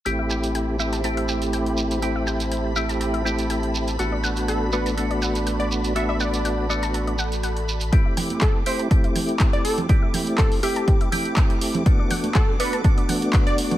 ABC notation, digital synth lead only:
X:1
M:4/4
L:1/16
Q:"Swing 16ths" 1/4=122
K:Ador
V:1 name="Digital synth lead"
z16 | z16 | z4 A z B z6 d z2 | e e d6 z8 |
z4 A z c z6 d A z | z4 A z G6 z4 | z4 A z B z6 d z2 |]